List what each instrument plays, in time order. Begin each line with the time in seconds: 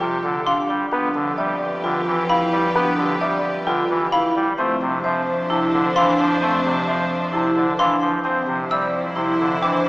Already playing: cello F2, string section G4 A4
0.01 pipe organ C3, vibraphone F4, grand piano G5
0.24 pipe organ D3
0.46 vibraphone D4, grand piano F5, xylophone C6
0.69 pipe organ G3
0.92 cello F2, pipe organ B3, vibraphone D4, string section G4 B4, grand piano B4
1.15 pipe organ D3
1.38 pipe organ G3, vibraphone D5, grand piano E5
1.84 pipe organ D3, vibraphone F4, grand piano G5
2.07 pipe organ E3
2.29 vibraphone E4, grand piano F5, xylophone B5
2.52 pipe organ G3
2.75 pipe organ B3, vibraphone D4, grand piano B4
2.98 pipe organ D3
3.21 pipe organ G3, vibraphone D5, grand piano E5
3.67 pipe organ D3, vibraphone F4, grand piano G5
3.90 pipe organ E3
4.12 vibraphone E4, grand piano F5, xylophone B5
4.36 pipe organ G3
4.58 cello F2, pipe organ A3, vibraphone C4, string section D4 C5, grand piano C5
4.82 pipe organ C3
5.04 pipe organ F3, vibraphone C5, grand piano E5
5.50 pipe organ C3, vibraphone E4, grand piano A5
5.73 pipe organ D3
5.96 pipe organ E3, vibraphone D4, grand piano F5, xylophone C6
6.19 pipe organ F3
6.41 pipe organ A3, vibraphone C4, grand piano C5
6.65 pipe organ C3
6.87 pipe organ F3, vibraphone C5, grand piano E5
7.33 pipe organ C3, vibraphone E4, grand piano A5
7.56 pipe organ D3
7.78 pipe organ E3, vibraphone D4, grand piano F5, xylophone C6
8.01 pipe organ F3
8.24 cello F2, pipe organ C4, vibraphone C4, string section E4 C5, grand piano C5
8.47 pipe organ C3
8.70 pipe organ G3, vibraphone D5, grand piano E5, xylophone E6
9.16 pipe organ C3, vibraphone E4, grand piano C6
9.40 pipe organ D3
9.62 pipe organ E3, vibraphone D4, grand piano G5, xylophone D6
9.85 pipe organ G3